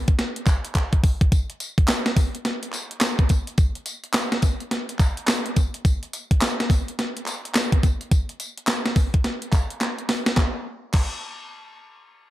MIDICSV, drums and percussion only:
0, 0, Header, 1, 2, 480
1, 0, Start_track
1, 0, Tempo, 566038
1, 1118, Time_signature, 4, 2, 24, 8
1, 10431, End_track
2, 0, Start_track
2, 0, Title_t, "Drums"
2, 66, Note_on_c, 9, 42, 51
2, 68, Note_on_c, 9, 36, 94
2, 151, Note_off_c, 9, 42, 0
2, 152, Note_off_c, 9, 36, 0
2, 158, Note_on_c, 9, 38, 68
2, 159, Note_on_c, 9, 42, 74
2, 243, Note_off_c, 9, 38, 0
2, 244, Note_off_c, 9, 42, 0
2, 307, Note_on_c, 9, 42, 67
2, 392, Note_off_c, 9, 42, 0
2, 395, Note_on_c, 9, 36, 93
2, 395, Note_on_c, 9, 39, 69
2, 396, Note_on_c, 9, 42, 67
2, 397, Note_on_c, 9, 54, 70
2, 480, Note_off_c, 9, 36, 0
2, 480, Note_off_c, 9, 39, 0
2, 481, Note_off_c, 9, 42, 0
2, 481, Note_off_c, 9, 54, 0
2, 547, Note_on_c, 9, 42, 60
2, 632, Note_off_c, 9, 42, 0
2, 635, Note_on_c, 9, 39, 82
2, 636, Note_on_c, 9, 42, 76
2, 637, Note_on_c, 9, 36, 58
2, 720, Note_off_c, 9, 39, 0
2, 720, Note_off_c, 9, 42, 0
2, 722, Note_off_c, 9, 36, 0
2, 785, Note_on_c, 9, 42, 54
2, 786, Note_on_c, 9, 36, 68
2, 870, Note_off_c, 9, 42, 0
2, 871, Note_off_c, 9, 36, 0
2, 878, Note_on_c, 9, 36, 97
2, 878, Note_on_c, 9, 46, 72
2, 963, Note_off_c, 9, 36, 0
2, 963, Note_off_c, 9, 46, 0
2, 1027, Note_on_c, 9, 36, 99
2, 1028, Note_on_c, 9, 42, 66
2, 1112, Note_off_c, 9, 36, 0
2, 1112, Note_off_c, 9, 42, 0
2, 1119, Note_on_c, 9, 36, 110
2, 1119, Note_on_c, 9, 42, 75
2, 1119, Note_on_c, 9, 54, 66
2, 1204, Note_off_c, 9, 36, 0
2, 1204, Note_off_c, 9, 42, 0
2, 1204, Note_off_c, 9, 54, 0
2, 1269, Note_on_c, 9, 42, 54
2, 1354, Note_off_c, 9, 42, 0
2, 1359, Note_on_c, 9, 42, 93
2, 1359, Note_on_c, 9, 54, 68
2, 1444, Note_off_c, 9, 42, 0
2, 1444, Note_off_c, 9, 54, 0
2, 1508, Note_on_c, 9, 36, 100
2, 1509, Note_on_c, 9, 42, 58
2, 1592, Note_on_c, 9, 39, 91
2, 1593, Note_off_c, 9, 36, 0
2, 1594, Note_off_c, 9, 42, 0
2, 1597, Note_on_c, 9, 54, 88
2, 1598, Note_on_c, 9, 38, 124
2, 1599, Note_off_c, 9, 39, 0
2, 1599, Note_on_c, 9, 39, 93
2, 1599, Note_on_c, 9, 42, 77
2, 1682, Note_off_c, 9, 54, 0
2, 1683, Note_off_c, 9, 38, 0
2, 1684, Note_off_c, 9, 39, 0
2, 1684, Note_off_c, 9, 42, 0
2, 1746, Note_on_c, 9, 38, 71
2, 1746, Note_on_c, 9, 42, 54
2, 1830, Note_off_c, 9, 42, 0
2, 1831, Note_off_c, 9, 38, 0
2, 1836, Note_on_c, 9, 36, 107
2, 1836, Note_on_c, 9, 54, 71
2, 1837, Note_on_c, 9, 46, 75
2, 1921, Note_off_c, 9, 36, 0
2, 1921, Note_off_c, 9, 54, 0
2, 1922, Note_off_c, 9, 46, 0
2, 1990, Note_on_c, 9, 42, 53
2, 2075, Note_off_c, 9, 42, 0
2, 2077, Note_on_c, 9, 38, 70
2, 2079, Note_on_c, 9, 42, 75
2, 2162, Note_off_c, 9, 38, 0
2, 2163, Note_off_c, 9, 42, 0
2, 2228, Note_on_c, 9, 42, 62
2, 2311, Note_on_c, 9, 39, 68
2, 2312, Note_off_c, 9, 42, 0
2, 2320, Note_on_c, 9, 42, 66
2, 2321, Note_on_c, 9, 54, 71
2, 2396, Note_off_c, 9, 39, 0
2, 2405, Note_off_c, 9, 42, 0
2, 2406, Note_off_c, 9, 54, 0
2, 2467, Note_on_c, 9, 42, 59
2, 2548, Note_on_c, 9, 39, 84
2, 2552, Note_off_c, 9, 42, 0
2, 2555, Note_on_c, 9, 38, 106
2, 2555, Note_on_c, 9, 42, 73
2, 2556, Note_on_c, 9, 54, 89
2, 2557, Note_off_c, 9, 39, 0
2, 2557, Note_on_c, 9, 39, 84
2, 2639, Note_off_c, 9, 42, 0
2, 2640, Note_off_c, 9, 38, 0
2, 2641, Note_off_c, 9, 54, 0
2, 2642, Note_off_c, 9, 39, 0
2, 2703, Note_on_c, 9, 42, 50
2, 2704, Note_on_c, 9, 36, 99
2, 2788, Note_off_c, 9, 42, 0
2, 2789, Note_off_c, 9, 36, 0
2, 2792, Note_on_c, 9, 42, 73
2, 2792, Note_on_c, 9, 54, 65
2, 2798, Note_on_c, 9, 36, 93
2, 2876, Note_off_c, 9, 54, 0
2, 2877, Note_off_c, 9, 42, 0
2, 2883, Note_off_c, 9, 36, 0
2, 2945, Note_on_c, 9, 42, 59
2, 3030, Note_off_c, 9, 42, 0
2, 3033, Note_on_c, 9, 42, 81
2, 3033, Note_on_c, 9, 54, 65
2, 3036, Note_on_c, 9, 36, 115
2, 3118, Note_off_c, 9, 42, 0
2, 3118, Note_off_c, 9, 54, 0
2, 3120, Note_off_c, 9, 36, 0
2, 3183, Note_on_c, 9, 42, 50
2, 3268, Note_off_c, 9, 42, 0
2, 3271, Note_on_c, 9, 42, 99
2, 3271, Note_on_c, 9, 54, 72
2, 3356, Note_off_c, 9, 42, 0
2, 3356, Note_off_c, 9, 54, 0
2, 3422, Note_on_c, 9, 42, 59
2, 3506, Note_on_c, 9, 39, 104
2, 3507, Note_off_c, 9, 42, 0
2, 3512, Note_on_c, 9, 38, 119
2, 3512, Note_on_c, 9, 54, 86
2, 3514, Note_on_c, 9, 42, 70
2, 3519, Note_off_c, 9, 39, 0
2, 3519, Note_on_c, 9, 39, 94
2, 3597, Note_off_c, 9, 38, 0
2, 3597, Note_off_c, 9, 54, 0
2, 3599, Note_off_c, 9, 42, 0
2, 3604, Note_off_c, 9, 39, 0
2, 3663, Note_on_c, 9, 42, 56
2, 3664, Note_on_c, 9, 38, 70
2, 3748, Note_off_c, 9, 38, 0
2, 3748, Note_off_c, 9, 42, 0
2, 3749, Note_on_c, 9, 54, 67
2, 3750, Note_on_c, 9, 46, 65
2, 3754, Note_on_c, 9, 36, 96
2, 3834, Note_off_c, 9, 54, 0
2, 3835, Note_off_c, 9, 46, 0
2, 3839, Note_off_c, 9, 36, 0
2, 3904, Note_on_c, 9, 42, 53
2, 3989, Note_off_c, 9, 42, 0
2, 3996, Note_on_c, 9, 38, 68
2, 3997, Note_on_c, 9, 42, 78
2, 4081, Note_off_c, 9, 38, 0
2, 4082, Note_off_c, 9, 42, 0
2, 4147, Note_on_c, 9, 42, 62
2, 4232, Note_off_c, 9, 42, 0
2, 4232, Note_on_c, 9, 39, 64
2, 4236, Note_on_c, 9, 36, 103
2, 4239, Note_on_c, 9, 42, 67
2, 4240, Note_on_c, 9, 54, 71
2, 4316, Note_off_c, 9, 39, 0
2, 4321, Note_off_c, 9, 36, 0
2, 4324, Note_off_c, 9, 42, 0
2, 4325, Note_off_c, 9, 54, 0
2, 4386, Note_on_c, 9, 42, 60
2, 4471, Note_off_c, 9, 42, 0
2, 4472, Note_on_c, 9, 39, 83
2, 4473, Note_off_c, 9, 39, 0
2, 4473, Note_on_c, 9, 39, 88
2, 4479, Note_on_c, 9, 38, 107
2, 4479, Note_on_c, 9, 42, 65
2, 4480, Note_on_c, 9, 54, 91
2, 4558, Note_off_c, 9, 39, 0
2, 4563, Note_off_c, 9, 42, 0
2, 4564, Note_off_c, 9, 38, 0
2, 4565, Note_off_c, 9, 54, 0
2, 4627, Note_on_c, 9, 42, 51
2, 4712, Note_off_c, 9, 42, 0
2, 4718, Note_on_c, 9, 42, 71
2, 4718, Note_on_c, 9, 54, 63
2, 4720, Note_on_c, 9, 36, 91
2, 4803, Note_off_c, 9, 42, 0
2, 4803, Note_off_c, 9, 54, 0
2, 4805, Note_off_c, 9, 36, 0
2, 4869, Note_on_c, 9, 42, 59
2, 4954, Note_off_c, 9, 42, 0
2, 4960, Note_on_c, 9, 36, 107
2, 4961, Note_on_c, 9, 42, 77
2, 4961, Note_on_c, 9, 54, 70
2, 5044, Note_off_c, 9, 36, 0
2, 5046, Note_off_c, 9, 42, 0
2, 5046, Note_off_c, 9, 54, 0
2, 5111, Note_on_c, 9, 42, 49
2, 5196, Note_off_c, 9, 42, 0
2, 5202, Note_on_c, 9, 42, 98
2, 5202, Note_on_c, 9, 54, 68
2, 5287, Note_off_c, 9, 42, 0
2, 5287, Note_off_c, 9, 54, 0
2, 5351, Note_on_c, 9, 36, 94
2, 5355, Note_on_c, 9, 42, 60
2, 5436, Note_off_c, 9, 36, 0
2, 5438, Note_on_c, 9, 39, 97
2, 5439, Note_off_c, 9, 42, 0
2, 5444, Note_on_c, 9, 38, 115
2, 5444, Note_on_c, 9, 54, 82
2, 5446, Note_on_c, 9, 42, 80
2, 5523, Note_off_c, 9, 39, 0
2, 5528, Note_off_c, 9, 54, 0
2, 5529, Note_off_c, 9, 38, 0
2, 5531, Note_off_c, 9, 42, 0
2, 5598, Note_on_c, 9, 38, 66
2, 5598, Note_on_c, 9, 42, 54
2, 5680, Note_on_c, 9, 36, 101
2, 5682, Note_off_c, 9, 42, 0
2, 5683, Note_off_c, 9, 38, 0
2, 5685, Note_on_c, 9, 46, 67
2, 5685, Note_on_c, 9, 54, 73
2, 5765, Note_off_c, 9, 36, 0
2, 5769, Note_off_c, 9, 54, 0
2, 5770, Note_off_c, 9, 46, 0
2, 5837, Note_on_c, 9, 42, 53
2, 5922, Note_off_c, 9, 42, 0
2, 5926, Note_on_c, 9, 38, 70
2, 5927, Note_on_c, 9, 42, 77
2, 6011, Note_off_c, 9, 38, 0
2, 6012, Note_off_c, 9, 42, 0
2, 6077, Note_on_c, 9, 42, 62
2, 6158, Note_on_c, 9, 39, 69
2, 6161, Note_off_c, 9, 42, 0
2, 6168, Note_on_c, 9, 42, 65
2, 6168, Note_on_c, 9, 54, 70
2, 6243, Note_off_c, 9, 39, 0
2, 6252, Note_off_c, 9, 42, 0
2, 6253, Note_off_c, 9, 54, 0
2, 6319, Note_on_c, 9, 42, 58
2, 6398, Note_on_c, 9, 39, 79
2, 6401, Note_off_c, 9, 39, 0
2, 6401, Note_on_c, 9, 39, 81
2, 6404, Note_off_c, 9, 42, 0
2, 6407, Note_on_c, 9, 38, 108
2, 6407, Note_on_c, 9, 42, 66
2, 6408, Note_on_c, 9, 54, 98
2, 6485, Note_off_c, 9, 39, 0
2, 6492, Note_off_c, 9, 38, 0
2, 6492, Note_off_c, 9, 42, 0
2, 6493, Note_off_c, 9, 54, 0
2, 6550, Note_on_c, 9, 36, 100
2, 6554, Note_on_c, 9, 42, 52
2, 6635, Note_off_c, 9, 36, 0
2, 6639, Note_off_c, 9, 42, 0
2, 6642, Note_on_c, 9, 42, 74
2, 6642, Note_on_c, 9, 54, 60
2, 6643, Note_on_c, 9, 36, 89
2, 6727, Note_off_c, 9, 42, 0
2, 6727, Note_off_c, 9, 54, 0
2, 6728, Note_off_c, 9, 36, 0
2, 6791, Note_on_c, 9, 42, 60
2, 6876, Note_off_c, 9, 42, 0
2, 6881, Note_on_c, 9, 36, 114
2, 6881, Note_on_c, 9, 42, 83
2, 6881, Note_on_c, 9, 54, 67
2, 6966, Note_off_c, 9, 36, 0
2, 6966, Note_off_c, 9, 42, 0
2, 6966, Note_off_c, 9, 54, 0
2, 7031, Note_on_c, 9, 42, 48
2, 7116, Note_off_c, 9, 42, 0
2, 7122, Note_on_c, 9, 42, 100
2, 7122, Note_on_c, 9, 54, 67
2, 7206, Note_off_c, 9, 42, 0
2, 7207, Note_off_c, 9, 54, 0
2, 7272, Note_on_c, 9, 42, 57
2, 7352, Note_on_c, 9, 39, 90
2, 7356, Note_off_c, 9, 42, 0
2, 7358, Note_on_c, 9, 54, 89
2, 7359, Note_on_c, 9, 38, 112
2, 7360, Note_on_c, 9, 42, 71
2, 7362, Note_off_c, 9, 39, 0
2, 7362, Note_on_c, 9, 39, 91
2, 7443, Note_off_c, 9, 54, 0
2, 7444, Note_off_c, 9, 38, 0
2, 7445, Note_off_c, 9, 42, 0
2, 7447, Note_off_c, 9, 39, 0
2, 7509, Note_on_c, 9, 42, 55
2, 7510, Note_on_c, 9, 38, 66
2, 7594, Note_off_c, 9, 42, 0
2, 7595, Note_off_c, 9, 38, 0
2, 7596, Note_on_c, 9, 54, 67
2, 7597, Note_on_c, 9, 46, 72
2, 7599, Note_on_c, 9, 36, 105
2, 7681, Note_off_c, 9, 54, 0
2, 7682, Note_off_c, 9, 46, 0
2, 7683, Note_off_c, 9, 36, 0
2, 7749, Note_on_c, 9, 42, 51
2, 7751, Note_on_c, 9, 36, 90
2, 7834, Note_off_c, 9, 42, 0
2, 7836, Note_off_c, 9, 36, 0
2, 7838, Note_on_c, 9, 38, 67
2, 7839, Note_on_c, 9, 42, 75
2, 7923, Note_off_c, 9, 38, 0
2, 7924, Note_off_c, 9, 42, 0
2, 7988, Note_on_c, 9, 42, 61
2, 8072, Note_off_c, 9, 42, 0
2, 8077, Note_on_c, 9, 39, 66
2, 8078, Note_on_c, 9, 36, 98
2, 8078, Note_on_c, 9, 42, 67
2, 8078, Note_on_c, 9, 54, 66
2, 8162, Note_off_c, 9, 36, 0
2, 8162, Note_off_c, 9, 39, 0
2, 8162, Note_off_c, 9, 42, 0
2, 8163, Note_off_c, 9, 54, 0
2, 8229, Note_on_c, 9, 42, 52
2, 8314, Note_off_c, 9, 42, 0
2, 8317, Note_on_c, 9, 42, 69
2, 8318, Note_on_c, 9, 38, 59
2, 8320, Note_on_c, 9, 39, 81
2, 8402, Note_off_c, 9, 38, 0
2, 8402, Note_off_c, 9, 42, 0
2, 8405, Note_off_c, 9, 39, 0
2, 8467, Note_on_c, 9, 42, 52
2, 8552, Note_off_c, 9, 42, 0
2, 8555, Note_on_c, 9, 46, 73
2, 8556, Note_on_c, 9, 38, 98
2, 8639, Note_off_c, 9, 46, 0
2, 8640, Note_off_c, 9, 38, 0
2, 8703, Note_on_c, 9, 38, 96
2, 8703, Note_on_c, 9, 42, 54
2, 8788, Note_off_c, 9, 38, 0
2, 8788, Note_off_c, 9, 42, 0
2, 8788, Note_on_c, 9, 38, 86
2, 8795, Note_on_c, 9, 36, 105
2, 8797, Note_on_c, 9, 39, 89
2, 8873, Note_off_c, 9, 38, 0
2, 8880, Note_off_c, 9, 36, 0
2, 8882, Note_off_c, 9, 39, 0
2, 9272, Note_on_c, 9, 49, 87
2, 9274, Note_on_c, 9, 39, 75
2, 9275, Note_on_c, 9, 36, 105
2, 9357, Note_off_c, 9, 49, 0
2, 9359, Note_off_c, 9, 39, 0
2, 9360, Note_off_c, 9, 36, 0
2, 10431, End_track
0, 0, End_of_file